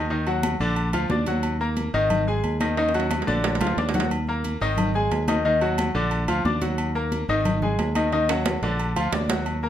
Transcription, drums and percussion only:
0.10 high conga soft
0.27 high conga soft
0.27 low agogo medium
0.43 high conga loud
0.43 low agogo loud
0.60 high conga soft
0.76 high conga soft
0.76 low agogo medium
0.93 high conga soft
0.93 low agogo loud
1.10 high conga medium
1.10 low timbale medium
1.26 high conga medium
1.26 low agogo medium
1.43 high conga soft
1.43 low agogo medium
1.61 high conga soft
1.77 high conga medium
1.77 low agogo medium
1.94 high conga soft
2.10 high conga soft
2.10 low conga medium
2.10 low agogo loud
2.27 high conga soft
2.44 high conga soft
2.44 low agogo medium
2.60 high conga medium
2.60 low agogo loud
2.77 high conga soft
2.77 high timbale medium
2.89 high timbale medium
2.94 high conga soft
2.94 low agogo medium
3.00 high timbale medium
3.11 high conga medium
3.11 high timbale medium
3.11 low agogo loud
3.22 low timbale medium
3.28 high conga medium
3.44 low timbale loud
3.44 low agogo medium
3.55 low timbale medium
3.61 low conga medium
3.61 low agogo loud
3.67 low timbale medium
3.78 low timbale medium
3.89 low timbale medium
3.94 low conga medium
3.94 low agogo medium
4.00 low timbale loud
4.11 high conga soft
4.11 low agogo medium
4.27 high conga soft
4.44 high conga medium
4.44 low agogo medium
4.61 high conga soft
4.77 high conga soft
4.77 low conga medium
4.77 low agogo loud
4.94 high conga soft
5.11 high conga soft
5.11 low timbale medium
5.11 low agogo medium
5.28 high conga medium
5.28 low agogo loud
5.45 high conga soft
5.61 high conga soft
5.61 low agogo medium
5.78 high conga loud
5.78 low agogo loud
5.95 high conga soft
6.11 high conga soft
6.11 low agogo medium
6.28 high conga soft
6.28 low agogo loud
6.45 high conga medium
6.62 high conga medium
6.62 low agogo medium
6.78 high conga soft
6.78 low agogo medium
6.95 high conga soft
7.12 high conga medium
7.12 low agogo medium
7.29 high conga soft
7.45 high conga soft
7.45 low conga medium
7.45 low agogo loud
7.62 high conga soft
7.62 low conga medium
7.79 high conga soft
7.79 low timbale medium
7.79 low agogo medium
7.95 high conga medium
7.95 low agogo loud
8.12 high conga soft
8.12 high timbale medium
8.29 high conga soft
8.29 high timbale medium
8.29 low agogo medium
8.46 high conga loud
8.46 low timbale loud
8.46 low agogo loud
8.63 high conga soft
8.63 low timbale medium
8.79 high conga soft
8.79 low agogo medium
8.96 high conga soft
8.96 low agogo loud
9.13 high conga medium
9.13 low timbale loud
9.29 high conga medium
9.29 low timbale loud
9.29 low agogo medium
9.46 high conga soft
9.46 low agogo medium
9.63 high conga soft

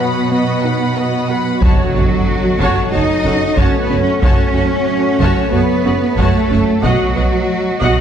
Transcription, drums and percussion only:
1.62 taiko medium
2.60 taiko medium
3.58 taiko medium
4.23 taiko medium
5.20 taiko medium
6.18 taiko medium
6.84 taiko medium
7.81 taiko medium

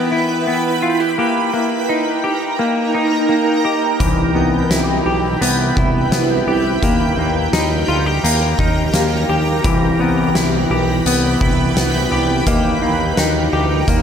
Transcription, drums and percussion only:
4.00 kick medium
4.00 closed hi-hat medium
4.71 snare medium
4.71 closed hi-hat medium
5.42 closed hi-hat medium
5.77 kick medium
6.12 snare loud
6.12 closed hi-hat medium
6.83 kick medium
6.83 closed hi-hat medium
7.53 snare medium
7.53 closed hi-hat medium
8.25 closed hi-hat medium
8.59 kick medium
8.94 snare loud
8.94 closed hi-hat medium
9.64 kick loud
9.64 closed hi-hat medium
10.35 snare medium
10.35 closed hi-hat medium
11.06 closed hi-hat medium
11.41 kick medium
11.77 snare loud
11.77 closed hi-hat medium
12.47 kick medium
12.47 closed hi-hat medium
13.17 snare medium
13.17 closed hi-hat medium
13.88 kick medium
13.88 closed hi-hat medium

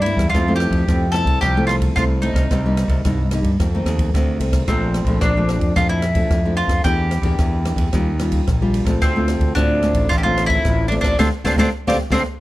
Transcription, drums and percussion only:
0.06 ride medium
0.18 kick medium
0.18 cross-stick medium
0.18 ride medium
0.34 kick medium
0.34 cross-stick medium
0.34 ride soft
0.60 cross-stick medium
0.60 ride soft
0.72 kick medium
0.72 ride soft
0.88 kick medium
0.88 cross-stick medium
0.88 ride soft
1.14 cross-stick medium
1.14 ride soft
1.27 kick medium
1.27 ride soft
1.42 kick medium
1.42 cross-stick medium
1.42 ride soft
1.69 cross-stick medium
1.69 ride medium
1.81 kick medium
1.81 ride medium
1.97 kick medium
1.97 cross-stick medium
1.97 ride soft
2.23 ride medium
2.36 kick medium
2.36 cross-stick medium
2.36 ride medium
2.51 kick medium
2.51 cross-stick medium
2.51 ride soft
2.77 cross-stick medium
2.77 ride medium
2.89 kick medium
2.89 ride soft
3.05 kick medium
3.05 cross-stick medium
3.05 ride soft
3.31 cross-stick medium
3.31 ride medium
3.44 kick medium
3.44 ride soft
3.60 kick medium
3.60 cross-stick medium
3.60 ride soft
3.86 cross-stick medium
3.86 ride medium
3.99 kick medium
3.99 ride medium
4.14 kick medium
4.14 cross-stick medium
4.14 ride soft
4.40 ride medium
4.53 kick medium
4.53 cross-stick medium
4.53 ride medium
4.68 kick medium
4.68 cross-stick medium
4.68 ride soft
4.94 cross-stick medium
4.94 ride soft
5.07 kick medium
5.07 ride soft
5.22 kick medium
5.22 cross-stick medium
5.22 ride soft
5.49 cross-stick medium
5.49 ride soft
5.61 kick medium
5.61 ride soft
5.76 kick medium
5.76 cross-stick medium
5.76 ride soft
6.02 cross-stick medium
6.02 ride medium
6.15 kick medium
6.15 ride soft
6.30 kick medium
6.30 cross-stick medium
6.30 ride soft
6.57 ride soft
6.69 kick medium
6.69 cross-stick medium
6.69 ride medium
6.84 kick medium
6.84 cross-stick medium
6.84 ride soft
7.11 cross-stick medium
7.11 ride soft
7.23 kick medium
7.23 ride medium
7.38 kick medium
7.38 cross-stick medium
7.38 ride soft
7.65 cross-stick medium
7.65 ride soft
7.78 kick medium
7.78 ride medium
7.93 kick medium
7.93 cross-stick medium
7.93 ride soft
8.19 cross-stick medium
8.19 ride medium
8.32 kick medium
8.32 ride medium
8.47 kick medium
8.47 cross-stick medium
8.47 ride soft
8.74 ride medium
8.86 kick medium
8.86 cross-stick medium
8.86 ride medium
9.02 kick medium
9.02 cross-stick medium
9.02 ride soft
9.28 cross-stick medium
9.28 ride soft
9.41 kick medium
9.41 ride soft
9.56 kick medium
9.56 cross-stick medium
9.56 ride soft
9.83 cross-stick medium
9.83 ride soft
9.94 kick medium
9.94 ride medium
10.11 kick medium
10.11 cross-stick medium
10.11 ride soft
10.38 cross-stick medium
10.38 ride soft
10.50 kick medium
10.50 ride medium
10.65 kick medium
10.65 cross-stick medium
10.65 ride soft
10.92 ride medium
11.04 kick medium
11.04 cross-stick medium
11.04 ride medium
11.19 kick medium
11.19 snare medium
11.45 kick medium
11.45 snare medium
11.58 kick medium
11.58 snare medium
11.88 kick medium
11.88 snare medium
12.12 kick medium
12.12 snare medium

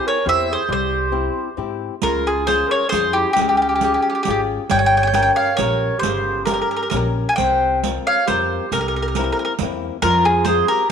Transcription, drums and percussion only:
2.02 riq medium
2.48 riq soft
2.92 riq medium
3.36 riq medium
3.81 riq medium
4.25 riq medium
4.70 riq medium
5.14 riq medium
5.58 riq medium
6.03 riq medium
6.47 riq medium
6.91 riq medium
7.38 riq medium
7.84 riq medium
8.28 riq medium
8.72 riq medium
9.15 riq medium
9.59 riq medium
10.02 riq medium
10.45 riq medium

